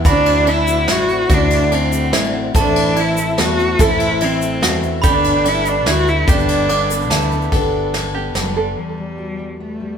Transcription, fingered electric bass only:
X:1
M:3/4
L:1/8
Q:1/4=145
K:G
V:1 name="Fingered electric bass" clef=bass
D,,4 A,,,2 | D,,4 A,,,2 | A,,,4 E,,2 | A,,,4 E,,2 |
G,,,4 D,,2 | G,,,4 D,,2 | G,,,4 F,,,2 | z6 |]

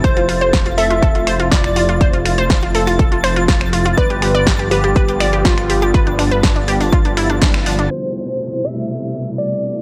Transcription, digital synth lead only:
X:1
M:4/4
L:1/8
Q:1/4=122
K:Am
V:1 name="Digital synth lead"
c3 e3 d2- | d z6 z | B3 G3 F2- | F z6 z |
c3 e3 d2 |]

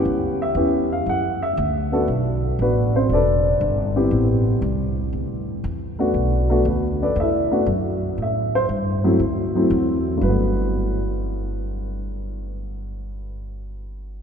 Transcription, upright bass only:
X:1
M:4/4
L:1/8
Q:"Swing" 1/4=118
K:G
V:1 name="Upright bass" clef=bass
^C,,2 E,,2 F,,2 D,,2 | B,,,2 A,,,2 E,,,2 G,,,2 | A,,,2 C,,2 D,,2 E,,2 | B,,,2 D,,2 E,,2 F,,2 |
A,,2 G,,2 D,,2 E,,2 | G,,,8- | G,,,8 |]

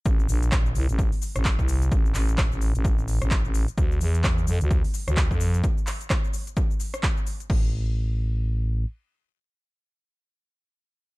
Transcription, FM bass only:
X:1
M:4/4
L:1/16
Q:"Swing 16ths" 1/4=129
K:Dm
V:1 name="FM bass" clef=bass
A,,,2 B,,,4 C,, A,,,2 z2 A,,,2 C,,3 | A,,,2 A,,,3 A,,,2 A,,,4 A,,,2 A,,,2 z | D,,2 E,,4 F,, D,,2 z2 D,,2 F,,3 | z16 |
A,,,12 z4 | z16 |]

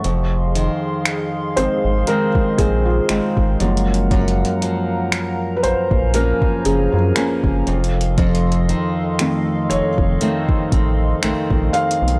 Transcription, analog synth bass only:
X:1
M:4/4
L:1/16
Q:"Swing 16ths" 1/4=59
K:Fphr
V:1 name="Analog synth bass" clef=bass
F,,,3 z3 A,,, A,,, z2 B,,,2 A,,, A,,, G,,,2- | G,,,2 z4 B,,, B,,,2 z G,,, G,, z G,,, F,,,2- | F,,,3 z3 F,,, F,,, z2 =A,,,2 B,,, B,,, z _C,, |]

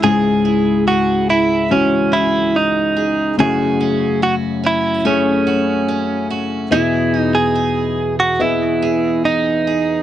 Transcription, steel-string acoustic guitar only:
X:1
M:4/4
L:1/8
Q:1/4=72
K:C#m
V:1 name="Steel-string acoustic guitar"
[C,CEG] E G E C G2 G | [F,,F] C F C A, F C F | [E,G] D G2 B, G D G |]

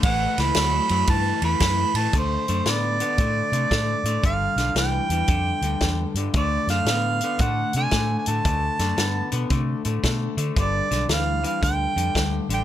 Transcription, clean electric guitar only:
X:1
M:4/4
L:1/8
Q:"Swing" 1/4=114
K:G
V:1 name="Clean electric guitar" clef=bass
[A,,E,] [A,,E,] [A,,F,] [A,,F,] [A,,E,] [A,,E,] [A,,E,] [A,,E,] | [D,A,] [D,A,] [D,B,] [D,B,] [D,A,] [D,A,] [D,A,] [D,A,] | [G,,D,] [G,,D,] [G,,E,] [G,,E,] [G,,D,] [G,,D,] [G,,D,] [G,,D,] | [D,A,] [D,A,] [D,B,] [D,B,] [D,A,] [D,A,] [D,A,] [D,A,] |
[D,A,] [D,A,] [D,B,] [D,B,] [D,A,] [D,A,] [D,A,] [D,A,] | [G,,D,] [G,,D,] [G,,E,] [G,,E,] [G,,D,] [G,,D,] [G,,D,] [G,,D,] |]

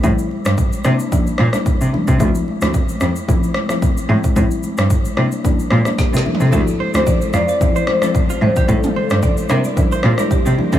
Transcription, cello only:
X:1
M:4/4
L:1/16
Q:"Swing 16ths" 1/4=111
K:Dm
V:1 name="Cello" clef=bass
A,,3 G,,3 C,4 B,,3 C,2 C, | D,,3 D,,3 F,,3 z4 z A,,2 | A,,3 G,,3 C,4 B,,3 C,2 C, | D,,3 D,,3 F,,3 z4 z A,,2 |
A,,3 G,,3 C,4 B,,3 C,2 C, |]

